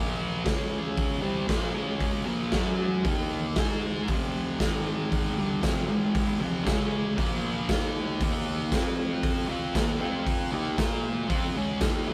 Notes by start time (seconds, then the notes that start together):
Already playing: A#2 F3 A#3
0.45 C#3 G#3 C#4, kick, snare, open hi-hat
0.97 kick, open hi-hat
1.22 C3 G3 C4
1.48 A#2 F3 A#3, kick, snare, open hi-hat
1.73 C#3 G#3 C#4
2.00 kick, open hi-hat
2.26 A#2 F3 A#3
2.52 F#3 C#4 F#4, kick, snare, open hi-hat
3.05 D#3 A#3 D#4, kick, open hi-hat
3.56 G#3 D#4 G#4, kick, snare, open hi-hat
4.08 F2 C3 F3, kick, open hi-hat
4.60 G#2 D#3 G#3, kick, snare, open hi-hat, tambourine
5.12 kick, open hi-hat
5.37 G2 D3 G3
5.62 F2 C3 F3, kick, snare, open hi-hat, tambourine
5.89 G#2 D#3 G#3
6.15 kick, open hi-hat
6.39 F2 C3 F3
6.64 C#3 G#3 C#4, kick, snare, open hi-hat, tambourine
7.18 A#2 F3 A#3, kick, open hi-hat
7.69 D#3 A#3 D#4, kick, snare, open hi-hat, tambourine
8.20 D#3 A#3 D#4, kick, open hi-hat
8.72 F3 C4 F4, kick, snare, open hi-hat, tambourine
9.23 kick, open hi-hat
9.48 F3 C4 F4
9.75 D#3 A#3 D#4, kick, snare, open hi-hat, tambourine
10.00 F3 C4 F4
10.27 kick, open hi-hat
10.52 D#3 A#3 D#4
10.78 A#3 F4 A#4, kick, snare, open hi-hat, tambourine
11.29 F3 C4 F4, kick, open hi-hat
11.56 C#3 G#3 C#4
11.81 D#3 A#3 D#4, kick, snare, open hi-hat, tambourine
12.08 F3 C4 F4